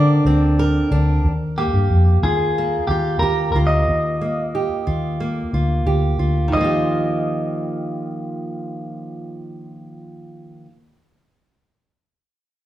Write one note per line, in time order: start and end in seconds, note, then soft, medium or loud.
0.00 0.19 D3 loud
0.00 1.26 D3 medium
0.00 0.25 C4 medium
0.00 0.90 D4 medium
0.00 0.59 A#4 medium
0.00 0.93 D5 medium
0.25 0.79 D2 medium
0.25 1.31 C4 medium
0.59 3.22 A#4 medium
0.91 1.18 D2 medium
0.91 1.31 D4 medium
1.24 1.65 D#2 medium
1.58 2.58 A#3 medium
1.58 2.19 G4 medium
1.73 1.87 G2 medium
1.90 2.17 F2 medium
2.22 2.77 D#2 medium
2.22 2.90 F4 soft
2.22 2.87 G#4 medium
2.58 4.21 A#3 medium
2.87 3.16 D#2 medium
2.87 3.55 F4 medium
2.87 3.19 G4 medium
3.19 3.48 D#2 medium
3.19 4.54 G4 medium
3.19 3.51 A#4 loud
3.52 3.82 D2 medium
3.52 4.86 F4 medium
3.52 3.57 A#4 medium
3.67 5.80 D#5 medium
3.88 4.67 D#2 medium
4.21 5.20 A#3 soft
4.55 5.86 G4 medium
4.87 5.41 D#2 medium
4.87 5.54 F4 medium
5.20 6.57 A#3 medium
5.53 5.80 D2 medium
5.53 6.19 F4 medium
5.86 6.13 D2 medium
5.86 6.63 G4 medium
6.19 6.46 D2 medium
6.19 6.60 F4 soft
6.48 10.65 D#3 medium
6.53 10.63 D#2 medium
6.53 10.68 F3 medium
6.53 10.64 D#5 medium
6.57 10.69 A#3 medium
6.57 10.71 F4 medium
6.64 10.73 G4 medium